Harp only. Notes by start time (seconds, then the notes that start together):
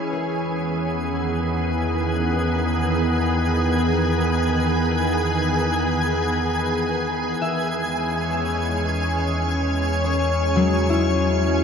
Already playing: C#4 E4 G#6
0.13 G#4
7.41 E5
10.05 C#5
10.56 F#3
10.89 E4